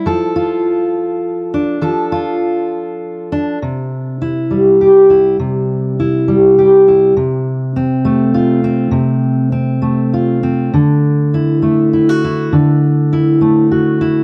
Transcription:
\new Staff \with { instrumentName = "Steel-string acoustic guitar" } { \time 6/8 \key c \major \tempo 4. = 67 << { a'8 f'2 d'8 | a'8 f'2 d'8 | r4 e'4 g'8 e'8 | r4 e'4 g'8 e'8 |
r4 c'4 f'8 c'8~ | c'4 c'4 f'8 c'8 | r4 e'4 e'16 fis'16 e'8 | r4 e'4 fis'8 e'8 | } \\ { f2. | f2. | c4. g4. | c4. g4. |
c4. a4. | c4. a4. | d4. a4. | d4. a4. | } >> }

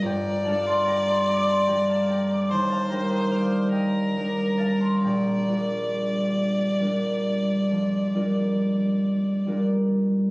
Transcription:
<<
  \new Staff \with { instrumentName = "Harp" } { \time 12/8 \key bes \major \tempo 4. = 46 << { <d'' g'' bes''>8 <f'' a''>16 <a'' c'''>16 <g'' bes''>16 <a'' c'''>16 <bes'' d'''>16 <a'' c'''>16 <g'' bes''>16 <f'' a''>16 <g'' bes''>16 <bes'' d'''>16 <a'' c'''>16 <f'' a''>16 <g'' bes''>16 <ees'' g''>16 <d'' f''>8 <ees'' g''>4 <f'' a''>16 <a'' c'''>16 | <g'' bes''>1. | } \\ { <g,, g, g d' bes'>8 <g d' g' a'>4. <g d' g' a'>4 ees,8 <g d' g' bes'>4. <g d' g' bes'>4 | bes,,8 <g d' f' bes'>4. <g d' f' bes'>4 f,8 <g d' f' bes'>4. <g d' f' bes'>4 | } >> }
  \new Staff \with { instrumentName = "Violin" } { \time 12/8 \key bes \major d''2. c''4. bes'4. | d''1~ d''4~ d''16 r8. | }
>>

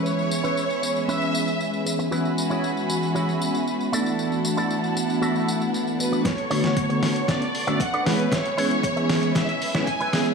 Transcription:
<<
  \new Staff \with { instrumentName = "Violin section" } { \time 4/4 \key b \dorian \tempo 4 = 116 cis''2 e''4. r8 | r1 | r2. r8 b'8 | cis''2 d''4 fis''8 b'8 |
cis''2 e''4 gis''8 gis'8 | }
  \new Staff \with { instrumentName = "Violin section" } { \time 4/4 \key b \dorian <cis' b' e''>1 | <fis' e'' gis'' b''>2.~ <fis' e'' gis'' b''>8 <d' e' fis'' a''>8~ | <d' e' fis'' a''>1 | <b a' cis'''>2.~ <b a' cis'''>8 <cis' b' e''>8~ |
<cis' b' e''>1 | }
  \new Staff \with { instrumentName = "Clean electric guitar" } { \time 4/4 \key b \dorian <cis' e' b'>8 r16 <cis' e' b'>16 r4 <cis' e' b'>8. r4 r16 | <e' fis' gis' b'>8 r16 <e' fis' gis' cis''>16 r4 <e' fis' gis' cis''>8. r8. <e' fis' a' d''>8~ | <e' fis' a' d''>8 r16 <e' fis' a' d''>16 r4 <e' fis' a' e''>8. r4 r16 | r8 <d' a' b' cis''>16 r2 <d' a' b' e''>16 r16 <d' a' b' d''>16 <e' b' cis''>8~ |
<e' b' cis''>16 r16 <e' b' cis''>16 r2 <e' b' cis''>16 r16 <e' b' cis''>8. | }
  \new Staff \with { instrumentName = "Analog polysynth" } { \time 4/4 \key b \dorian <e gis b cis' gis'>1 | <e gis b cis' fis'>2.~ <e gis b cis' fis'>8 <e a b d' fis'>8~ | <e a b d' fis'>1 | r8 <d a b fis' cis''>8. <d a b fis' cis''>8. <d a b cis' fis'>16 r8 <d a b cis' fis'>16 r8 <e gis b cis' gis'>8 |
r8 <e gis b cis' gis'>8. <e gis b cis' gis'>8. <e gis b cis' gis'>16 r8 <e gis b cis' gis'>16 r8 <e gis b cis' gis'>8 | }
  \new DrumStaff \with { instrumentName = "Drums" } \drummode { \time 4/4 tamb16 tamb16 tamb16 tamb16 tamb16 tamb16 tamb16 tamb16 tamb16 tamb16 tamb16 tamb16 tamb16 tamb16 tamb16 tamb16 | tamb16 tamb16 tamb16 tamb16 tamb16 tamb16 tamb16 tamb16 tamb16 tamb16 tamb16 tamb16 tamb16 tamb16 tamb16 tamb16 | tamb16 tamb16 tamb16 tamb16 tamb16 tamb16 tamb16 tamb16 tamb16 tamb16 tamb16 tamb16 tamb16 tamb16 tamb16 tamb16 | <hh bd sn>16 hh16 hho16 <hh sn>16 <hh bd>16 hh16 <hho sn>16 hh16 <hh bd sn>16 hh16 hho16 hh16 <hh bd>16 hh16 <hho sn>16 hh16 |
<hh bd sn>16 hh16 hho16 hh16 <hh bd>16 hh16 <hho sn>16 hh16 <hh bd sn>16 hh16 hho16 <hh sn>16 <hh bd>16 hh16 <hho sn>16 hh16 | }
>>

